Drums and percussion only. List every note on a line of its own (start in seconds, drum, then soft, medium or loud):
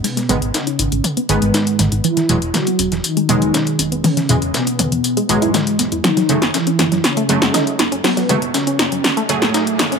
0.04 closed hi-hat medium
0.04 open hi-hat medium
0.17 snare soft
0.17 closed hi-hat soft
0.29 open hi-hat loud
0.29 mid tom medium
0.29 tambourine medium
0.42 closed hi-hat soft
0.54 snare loud
0.54 closed hi-hat medium
0.54 tambourine medium
0.67 closed hi-hat soft
0.79 open hi-hat loud
0.79 tambourine medium
0.92 closed hi-hat soft
1.04 closed hi-hat medium
1.04 mid tom medium
1.04 tambourine medium
1.17 closed hi-hat soft
1.29 open hi-hat loud
1.29 tambourine medium
1.42 closed hi-hat soft
1.54 snare loud
1.54 closed hi-hat medium
1.54 tambourine medium
1.67 closed hi-hat soft
1.79 snare soft
1.79 open hi-hat loud
1.79 mid tom medium
1.79 tambourine medium
1.92 closed hi-hat soft
2.04 closed hi-hat medium
2.04 tambourine medium
2.17 snare soft
2.17 closed hi-hat soft
2.29 open hi-hat loud
2.29 tambourine medium
2.42 closed hi-hat soft
2.54 snare loud
2.54 closed hi-hat medium
2.54 mid tom medium
2.54 tambourine medium
2.67 closed hi-hat soft
2.79 open hi-hat loud
2.79 tambourine medium
2.92 snare soft
2.92 closed hi-hat soft
3.04 closed hi-hat medium
3.04 tambourine medium
3.17 closed hi-hat soft
3.29 open hi-hat loud
3.29 mid tom medium
3.29 tambourine medium
3.42 closed hi-hat soft
3.54 snare loud
3.54 closed hi-hat medium
3.54 tambourine medium
3.67 closed hi-hat soft
3.79 open hi-hat loud
3.79 tambourine medium
3.92 closed hi-hat soft
4.04 closed hi-hat medium
4.04 open hi-hat medium
4.04 mid tom medium
4.17 snare soft
4.17 closed hi-hat soft
4.29 open hi-hat loud
4.29 tambourine medium
4.42 closed hi-hat soft
4.54 snare loud
4.54 closed hi-hat medium
4.54 tambourine medium
4.67 closed hi-hat soft
4.79 open hi-hat loud
4.79 mid tom medium
4.79 tambourine medium
4.92 closed hi-hat soft
5.04 closed hi-hat medium
5.04 tambourine medium
5.17 closed hi-hat soft
5.29 open hi-hat loud
5.29 tambourine medium
5.42 closed hi-hat soft
5.54 snare loud
5.54 closed hi-hat medium
5.54 mid tom medium
5.54 tambourine medium
5.67 closed hi-hat soft
5.79 snare soft
5.79 open hi-hat loud
5.79 tambourine medium
5.92 closed hi-hat soft
6.04 snare soft
6.04 closed hi-hat medium
6.04 mid tom medium
6.04 tambourine medium
6.17 snare soft
6.17 closed hi-hat soft
6.29 open hi-hat loud
6.29 tambourine medium
6.42 snare soft
6.42 closed hi-hat soft
6.54 snare loud
6.54 closed hi-hat medium
6.54 tambourine medium
6.67 closed hi-hat soft
6.79 snare medium
6.79 open hi-hat loud
6.79 mid tom medium
6.79 tambourine medium
6.92 snare soft
6.92 closed hi-hat soft
7.04 snare medium
7.04 closed hi-hat medium
7.04 tambourine medium
7.17 closed hi-hat soft
7.29 open hi-hat loud
7.29 tambourine medium
7.42 snare soft
7.42 closed hi-hat soft
7.54 snare loud
7.54 closed hi-hat medium
7.54 mid tom medium
7.54 tambourine medium
7.67 closed hi-hat soft
7.79 snare medium
7.79 open hi-hat loud
7.79 tambourine medium
7.92 closed hi-hat soft
8.04 snare medium
8.04 closed hi-hat medium
8.04 open hi-hat medium
8.17 snare soft
8.17 closed hi-hat soft
8.29 open hi-hat loud
8.29 mid tom medium
8.29 tambourine medium
8.42 closed hi-hat soft
8.54 snare loud
8.54 closed hi-hat medium
8.54 tambourine medium
8.67 closed hi-hat soft
8.79 snare medium
8.79 open hi-hat loud
8.79 tambourine medium
8.92 closed hi-hat soft
9.04 snare medium
9.04 closed hi-hat medium
9.04 mid tom loud
9.04 tambourine medium
9.17 closed hi-hat soft
9.29 open hi-hat loud
9.29 tambourine medium
9.42 snare medium
9.42 closed hi-hat soft
9.54 snare loud
9.54 closed hi-hat medium
9.54 tambourine medium
9.67 closed hi-hat soft
9.79 snare medium
9.79 snare soft
9.79 open hi-hat loud
9.79 mid tom medium
9.79 tambourine medium
9.92 closed hi-hat soft